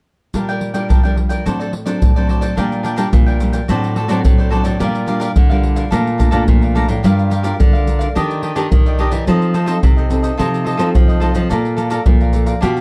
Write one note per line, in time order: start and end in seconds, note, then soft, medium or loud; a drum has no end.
0.34 0.87 A#2 medium
0.34 0.72 G3 soft
0.34 0.72 D4 soft
0.34 0.47 D4 soft
0.34 0.72 F4 soft
0.34 0.48 A#4 soft
0.34 0.48 D5 soft
0.34 0.47 G5 soft
0.34 pandeiro medium
0.34 maracas medium
0.34 surdo soft
0.49 0.75 A#4 soft
0.49 0.74 D5 soft
0.49 0.73 G5 medium
0.49 pandeiro soft
0.49 maracas soft
0.61 pandeiro soft
0.74 0.98 G3 soft
0.74 0.99 D4 soft
0.74 0.99 F4 medium
0.74 0.89 A#4 soft
0.74 0.88 D5 soft
0.74 0.88 G5 medium
0.74 pandeiro medium
0.74 maracas medium
0.89 1.43 F3 medium
0.89 1.02 D4 soft
0.89 1.03 A#4 soft
0.89 1.03 D5 soft
0.89 1.02 G5 soft
0.89 pandeiro medium
0.89 maracas medium
0.89 surdo medium
1.03 1.41 G3 soft
1.03 1.42 D4 medium
1.03 1.42 F4 medium
1.03 1.15 A#4 soft
1.03 1.16 D5 medium
1.03 1.16 G5 medium
1.03 pandeiro soft
1.03 maracas soft
1.16 muted cavaquinho stroke soft
1.16 pandeiro soft
1.29 1.44 A#4 soft
1.29 1.44 D5 soft
1.29 1.43 G5 medium
1.29 pandeiro medium
1.29 maracas medium
1.46 1.99 A2 medium
1.46 1.72 F#3 soft
1.46 1.72 C4 soft
1.46 1.72 D4 medium
1.46 1.59 F#4 soft
1.46 1.59 A4 soft
1.46 1.59 C5 soft
1.46 1.58 D5 soft
1.46 pandeiro medium
1.46 maracas medium
1.46 surdo soft
1.59 1.72 A4 soft
1.59 1.72 C5 medium
1.59 1.72 D5 medium
1.59 pandeiro soft
1.59 maracas soft
1.73 muted cavaquinho stroke soft
1.73 pandeiro medium
1.86 2.10 F#3 medium
1.86 2.10 C4 medium
1.86 2.10 D4 medium
1.86 2.15 A4 soft
1.86 2.14 C5 soft
1.86 2.13 D5 medium
1.86 pandeiro medium
1.86 maracas medium
2.02 2.55 A2 medium
2.02 pandeiro medium
2.02 maracas medium
2.02 surdo medium
2.16 2.54 F#3 medium
2.16 2.54 C4 medium
2.16 2.54 D4 soft
2.16 2.28 A4 medium
2.16 2.29 C5 medium
2.16 2.29 D5 medium
2.16 pandeiro soft
2.16 maracas soft
2.28 2.42 F#4 soft
2.28 2.42 A4 soft
2.28 2.41 C5 soft
2.28 2.40 D5 soft
2.28 pandeiro soft
2.41 2.56 A4 soft
2.41 2.56 C5 medium
2.41 2.55 D5 medium
2.41 pandeiro medium
2.41 maracas medium
2.56 3.05 A#2 medium
2.56 3.11 A#2 soft
2.56 2.84 G3 medium
2.56 2.82 D4 soft
2.56 2.84 D4 soft
2.56 2.85 F4 medium
2.56 2.83 A#4 medium
2.56 2.84 D5 medium
2.56 2.84 G5 medium
2.56 pandeiro medium
2.56 maracas medium
2.56 surdo medium
2.72 pandeiro soft
2.72 maracas soft
2.83 2.95 D4 soft
2.83 2.96 A#4 soft
2.83 2.97 D5 soft
2.83 2.97 G5 medium
2.83 pandeiro soft
2.83 maracas medium
2.96 3.36 G3 medium
2.96 3.07 D4 medium
2.96 3.36 D4 medium
2.96 3.37 F4 medium
2.96 3.07 A#4 medium
2.96 3.08 D5 medium
2.96 3.08 G5 medium
2.96 pandeiro medium
2.96 maracas medium
3.13 3.61 A#2 medium
3.13 3.66 F3 soft
3.13 pandeiro medium
3.13 maracas medium
3.13 surdo medium
3.26 3.54 A#4 soft
3.26 3.52 D5 soft
3.26 3.51 G5 soft
3.26 pandeiro soft
3.26 maracas soft
3.40 3.58 G3 soft
3.40 3.58 D4 soft
3.40 3.58 F4 medium
3.40 pandeiro medium
3.40 maracas medium
3.53 3.68 A#4 soft
3.53 3.67 D5 soft
3.53 3.67 G5 soft
3.53 pandeiro medium
3.53 maracas medium
3.68 4.05 A2 medium
3.68 4.23 A2 soft
3.68 3.96 F#3 soft
3.68 3.96 C4 soft
3.68 3.96 D4 soft
3.68 3.95 F#4 medium
3.68 3.96 A4 medium
3.68 3.96 C5 medium
3.68 3.97 D5 medium
3.68 pandeiro medium
3.68 maracas medium
3.68 surdo medium
3.84 pandeiro soft
3.84 maracas soft
3.96 4.07 F#4 soft
3.96 4.07 A4 soft
3.96 4.08 C5 soft
3.96 4.08 D5 medium
3.96 pandeiro medium
4.08 4.22 A2 medium
4.08 4.48 F#3 medium
4.08 4.48 C4 medium
4.08 4.48 D4 medium
4.08 4.19 F#4 medium
4.08 4.19 A4 medium
4.08 4.19 C5 medium
4.08 4.19 D5 medium
4.08 pandeiro medium
4.08 maracas medium
4.25 4.61 A2 medium
4.25 4.79 A2 soft
4.25 pandeiro medium
4.25 maracas medium
4.25 surdo medium
4.38 4.50 A4 soft
4.38 4.50 C5 soft
4.38 4.51 D5 soft
4.38 pandeiro soft
4.38 maracas soft
4.50 4.76 F#3 medium
4.50 4.77 C4 medium
4.50 4.77 D4 medium
4.50 4.64 F#4 medium
4.50 4.65 A4 medium
4.50 4.64 C5 medium
4.50 4.62 D5 medium
4.50 pandeiro soft
4.63 4.78 A2 medium
4.63 4.79 A4 soft
4.63 4.79 C5 soft
4.63 4.78 D5 soft
4.63 pandeiro medium
4.63 maracas medium
4.79 5.28 A#2 medium
4.79 5.35 A#2 soft
4.79 5.05 G3 soft
4.79 5.05 D4 soft
4.79 5.05 G4 medium
4.79 5.06 A#4 medium
4.79 5.07 D5 medium
4.79 5.07 F5 medium
4.79 pandeiro medium
4.79 maracas medium
4.79 surdo soft
4.84 5.06 F4 medium
4.95 pandeiro soft
4.95 maracas soft
5.07 5.35 G3 soft
5.07 5.35 D4 soft
5.07 5.35 F4 medium
5.07 5.18 G4 soft
5.07 5.19 A#4 soft
5.07 5.19 D5 soft
5.07 5.20 F5 soft
5.07 pandeiro soft
5.07 maracas medium
5.20 5.30 G4 medium
5.20 5.30 A#4 medium
5.20 5.31 D5 medium
5.20 5.31 F5 medium
5.20 pandeiro medium
5.20 maracas medium
5.36 5.90 A#2 soft
5.36 5.84 D3 medium
5.36 pandeiro medium
5.36 maracas medium
5.36 surdo medium
5.50 5.88 G3 medium
5.50 5.89 D4 medium
5.50 5.89 F4 medium
5.50 5.76 A#4 soft
5.50 5.76 D5 soft
5.50 5.74 F5 soft
5.50 pandeiro soft
5.50 maracas soft
5.63 pandeiro medium
5.76 5.91 A#4 soft
5.76 5.90 D5 soft
5.76 5.90 F5 soft
5.76 pandeiro medium
5.76 maracas medium
5.91 6.28 A#2 medium
5.91 6.46 A#2 soft
5.91 6.09 A3 medium
5.91 6.09 D4 medium
5.91 6.10 F4 medium
5.91 6.17 A4 medium
5.91 6.18 D5 medium
5.91 6.19 F5 medium
5.91 6.19 A#5 medium
5.91 pandeiro medium
5.91 maracas medium
5.91 surdo soft
6.07 pandeiro soft
6.07 maracas soft
6.18 6.29 A3 soft
6.18 6.29 D4 medium
6.18 6.29 F4 medium
6.18 6.30 A4 soft
6.18 6.30 D5 soft
6.18 6.31 F5 medium
6.18 6.31 A#5 soft
6.18 pandeiro medium
6.18 maracas medium
6.18 surdo medium
6.31 6.45 A#2 medium
6.31 6.71 A3 medium
6.31 6.71 D4 medium
6.31 6.71 F4 medium
6.31 6.42 A4 medium
6.31 6.42 D5 medium
6.31 6.42 F5 medium
6.31 6.42 A#5 medium
6.31 pandeiro medium
6.31 maracas medium
6.48 6.84 A#2 medium
6.48 7.02 F3 medium
6.48 pandeiro medium
6.48 maracas medium
6.48 surdo medium
6.62 6.74 D5 soft
6.62 6.75 F5 soft
6.62 6.75 A#5 soft
6.62 pandeiro soft
6.62 maracas soft
6.75 6.94 A3 soft
6.75 6.94 D4 medium
6.75 6.95 F4 medium
6.75 6.88 A4 medium
6.75 6.88 D5 medium
6.75 6.87 F5 medium
6.75 6.86 A#5 medium
6.75 pandeiro soft
6.75 maracas medium
6.87 7.01 A2 medium
6.87 7.03 D5 soft
6.87 7.02 F5 soft
6.87 7.01 A#5 soft
6.87 pandeiro medium
6.87 maracas medium
7.03 7.52 G2 medium
7.03 7.58 G3 medium
7.03 7.31 D4 soft
7.03 7.31 F4 soft
7.03 7.29 G4 medium
7.03 7.30 A#4 medium
7.03 7.31 A#4 medium
7.03 7.31 D5 medium
7.03 7.31 F5 medium
7.03 pandeiro medium
7.03 maracas medium
7.03 surdo soft
7.19 pandeiro soft
7.19 maracas soft
7.30 7.42 G4 soft
7.30 7.43 A#4 soft
7.30 7.43 D5 soft
7.30 7.44 F5 soft
7.30 pandeiro soft
7.30 maracas medium
7.43 7.83 D4 medium
7.43 7.83 F4 soft
7.43 7.54 G4 medium
7.43 7.54 A#4 medium
7.43 7.83 A#4 medium
7.43 7.54 D5 medium
7.43 7.54 F5 medium
7.43 pandeiro medium
7.43 maracas medium
7.60 8.07 D3 medium
7.60 8.13 D3 medium
7.60 pandeiro medium
7.60 maracas medium
7.60 surdo medium
7.73 8.00 A#4 soft
7.73 7.99 D5 soft
7.73 7.98 F5 soft
7.73 pandeiro soft
7.73 maracas soft
7.87 8.04 D4 soft
7.87 8.05 F4 soft
7.87 8.04 A#4 medium
7.87 pandeiro soft
7.87 maracas medium
7.99 8.14 A#4 soft
7.99 8.14 D5 soft
7.99 8.13 F5 soft
7.99 pandeiro medium
7.99 maracas medium
8.15 8.51 D#3 medium
8.15 8.69 D#3 soft
8.15 8.41 D4 medium
8.15 8.53 D4 soft
8.15 8.42 G4 medium
8.15 8.53 G4 soft
8.15 8.54 A#4 medium
8.15 8.43 D5 medium
8.15 8.42 D#5 medium
8.15 pandeiro medium
8.15 maracas medium
8.15 surdo soft
8.31 pandeiro soft
8.31 maracas soft
8.42 8.54 D4 soft
8.42 8.55 G4 soft
8.42 8.56 D5 medium
8.42 8.55 D#5 soft
8.42 pandeiro medium
8.56 8.68 D#3 medium
8.56 8.66 D4 medium
8.56 8.94 D4 medium
8.56 8.66 G4 medium
8.56 8.94 G4 medium
8.56 8.95 A#4 medium
8.56 8.66 D5 medium
8.56 8.66 D#5 medium
8.56 pandeiro medium
8.56 maracas medium
8.72 9.25 A#2 soft
8.72 9.07 D#3 medium
8.72 pandeiro medium
8.72 maracas medium
8.72 surdo medium
8.86 8.98 G4 soft
8.86 8.98 D5 soft
8.86 8.99 D#5 soft
8.86 pandeiro soft
8.86 maracas soft
8.98 9.12 D4 medium
8.98 9.16 D4 medium
8.98 9.12 G4 medium
8.98 9.16 G4 soft
8.98 9.16 A#4 medium
8.98 9.10 D5 medium
8.98 9.11 D#5 medium
8.98 pandeiro soft
9.11 9.24 E3 medium
9.11 9.26 G4 soft
9.11 9.25 D5 soft
9.11 9.26 D#5 soft
9.11 pandeiro medium
9.11 maracas medium
9.27 9.75 F3 medium
9.27 9.81 F3 soft
9.27 9.54 C4 soft
9.27 9.54 D#4 soft
9.27 9.53 F4 medium
9.27 9.53 A4 medium
9.27 9.54 A4 medium
9.27 9.54 C5 medium
9.27 9.55 D#5 medium
9.27 pandeiro medium
9.27 maracas medium
9.27 surdo medium
9.42 pandeiro soft
9.42 maracas soft
9.54 9.65 F4 soft
9.54 9.66 A4 soft
9.54 9.66 C5 soft
9.54 9.67 D#5 soft
9.54 pandeiro medium
9.54 maracas medium
9.66 10.05 C4 soft
9.66 10.06 D#4 medium
9.66 9.77 F4 medium
9.66 9.77 A4 medium
9.66 10.06 A4 medium
9.66 9.77 C5 medium
9.66 9.77 D#5 medium
9.66 pandeiro medium
9.66 maracas medium
9.83 10.36 C3 medium
9.83 10.31 C3 medium
9.83 pandeiro medium
9.83 maracas medium
9.83 surdo medium
9.97 10.24 A4 soft
9.97 10.23 C5 soft
9.97 10.21 D#5 soft
9.97 pandeiro soft
9.97 maracas soft
10.10 10.34 C4 medium
10.10 10.34 D#4 soft
10.10 10.34 A4 medium
10.10 pandeiro medium
10.10 maracas medium
10.22 10.37 A4 soft
10.22 10.37 C5 soft
10.22 10.36 D#5 soft
10.22 pandeiro medium
10.22 maracas medium
10.37 10.74 C3 medium
10.37 10.92 F3 soft
10.37 10.76 C4 soft
10.37 10.77 D#4 soft
10.37 10.63 F4 medium
10.37 10.65 A4 medium
10.37 10.77 A4 medium
10.37 10.65 C5 medium
10.37 10.66 D#5 medium
10.37 pandeiro medium
10.37 maracas medium
10.37 surdo soft
10.54 pandeiro soft
10.54 maracas soft
10.65 10.76 F4 soft
10.65 10.76 A4 soft
10.65 10.77 C5 medium
10.65 10.77 D#5 soft
10.65 pandeiro medium
10.77 10.92 F3 medium
10.77 11.18 C4 medium
10.77 11.18 D#4 medium
10.77 10.88 F4 medium
10.77 10.88 A4 medium
10.77 11.18 A4 medium
10.77 10.88 C5 medium
10.77 10.89 D#5 medium
10.77 pandeiro medium
10.77 maracas medium
10.95 11.48 C3 soft
10.95 11.30 F3 medium
10.95 pandeiro medium
10.95 maracas medium
10.95 surdo medium
11.08 11.20 A4 soft
11.08 11.21 C5 soft
11.08 11.21 D#5 soft
11.08 pandeiro soft
11.08 maracas soft
11.20 11.39 C4 soft
11.20 11.39 D#4 medium
11.20 11.34 F4 medium
11.20 11.34 A4 medium
11.20 11.39 A4 medium
11.20 11.33 C5 medium
11.20 11.32 D#5 medium
11.20 pandeiro soft
11.20 maracas medium
11.33 11.48 F3 medium
11.33 11.48 A4 soft
11.33 11.48 C5 soft
11.33 11.48 D#5 soft
11.33 pandeiro medium
11.33 maracas medium
11.49 11.98 A#2 medium
11.49 12.04 A#3 soft
11.49 11.77 F4 medium
11.49 11.75 A4 medium
11.49 11.77 A4 medium
11.49 11.76 D5 medium
11.49 11.77 D5 medium
11.49 11.77 F5 medium
11.49 11.77 A#5 medium
11.49 pandeiro medium
11.49 maracas medium
11.49 surdo soft
11.65 pandeiro soft
11.65 maracas soft
11.76 11.89 A4 soft
11.76 11.89 D5 soft
11.76 11.90 F5 soft
11.76 11.90 A#5 soft
11.76 pandeiro soft
11.76 maracas medium
11.90 12.29 F4 soft
11.90 12.00 A4 medium
11.90 12.29 A4 medium
11.90 12.00 D5 medium
11.90 12.29 D5 medium
11.90 12.01 F5 medium
11.90 12.01 A#5 medium
11.90 pandeiro medium
11.90 maracas medium
12.06 12.53 A#2 medium
12.06 12.60 F3 soft
12.06 pandeiro medium
12.06 maracas medium
12.06 surdo loud
12.20 12.47 D5 soft
12.20 12.46 F5 soft
12.20 12.45 A#5 soft
12.20 pandeiro soft
12.20 maracas soft
12.33 12.51 F4 soft
12.33 12.51 A4 soft
12.33 12.51 D5 medium
12.33 pandeiro medium
12.33 maracas medium
12.46 12.61 D5 soft
12.46 12.60 F5 soft
12.46 12.60 A#5 soft
12.46 pandeiro medium
12.46 maracas medium
12.61 12.81 B2 medium
12.61 12.81 B3 medium
12.61 12.81 D4 medium
12.61 12.81 F4 soft
12.61 12.81 G4 medium
12.61 12.81 B4 medium
12.61 12.81 D5 medium
12.61 12.81 F5 medium
12.61 pandeiro medium
12.61 maracas medium
12.61 surdo soft
12.77 pandeiro soft
12.77 maracas soft